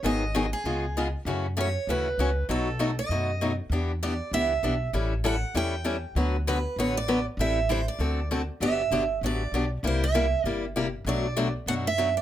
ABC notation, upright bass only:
X:1
M:4/4
L:1/8
Q:"Swing" 1/4=196
K:D
V:1 name="Upright bass" clef=bass
^G,,,4 C,,4 | F,,4 D,,2 C,,2 | B,,,4 F,,4 | E,,4 C,,2 B,,,2 |
A,,,4 E,,4 | D,,4 A,,,4 | A,,,4 D,,4 | [K:G] G,,,2 G,,,2 A,,,2 B,,,2 |
C,,4 G,,,4 | B,,,4 F,,4 |]